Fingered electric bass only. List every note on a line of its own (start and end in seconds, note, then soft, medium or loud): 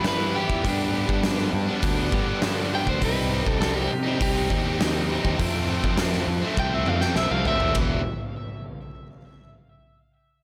0.00 0.42 G2 medium
0.50 0.63 E2 medium
0.65 1.04 G2 loud
1.09 1.49 G2 medium
1.53 1.67 G2 loud
1.83 2.10 D2 medium
2.12 2.79 G2 medium
2.86 3.00 D2 medium
3.02 3.42 C2 loud
3.47 3.86 C2 loud
3.91 4.17 C3 medium
4.21 4.47 C2 medium
4.50 5.16 D#2 medium
5.25 5.38 D#2 medium
5.39 5.79 F2 loud
5.83 6.23 F2 medium
6.27 6.41 F2 loud
6.57 6.84 C2 loud
6.86 7.13 F2 medium
7.15 7.29 B1 medium
7.31 7.44 C2 medium
7.45 7.59 D2 medium
7.60 7.74 E2 medium
7.75 8.03 E1 medium